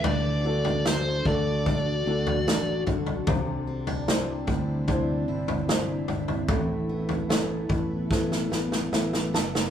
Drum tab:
SD |----o-------o---|----o-------o---|----o---oooooooo|
FT |o--o--o-o--o--oo|o--o--o-o--o--oo|o--o--o---------|
BD |------o-o-----o-|o-----o-o-------|o-----o-o-------|